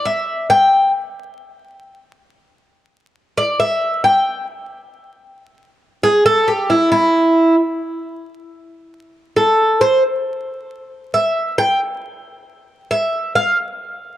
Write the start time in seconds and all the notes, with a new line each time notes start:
0.05 E5
0.50 G5
3.38 D5
3.60 E5
4.04 G5
6.03 G#4
6.26 A4
6.48 G4
6.70 E4
6.92 E4
9.36 A4
9.81 C5
11.14 E5
11.58 G5
12.91 E5
13.35 F5